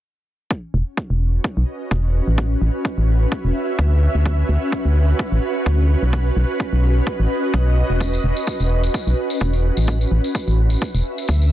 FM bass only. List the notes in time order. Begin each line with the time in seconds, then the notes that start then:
0.74 E1
1.10 E1
1.57 B1
1.91 E1
2.27 A1
2.62 A1
2.98 A1
3.45 E1
3.79 D2
4.15 D2
4.49 D2
4.85 D2
5.32 A1
5.66 D2
6.02 B1
6.36 B1
6.73 B1
7.20 A1
7.54 B1
7.90 E1
8.24 E1
8.60 E1
9.07 B1
9.41 E1
9.77 A1
10.11 A1
10.48 A1
10.95 E1
11.29 D2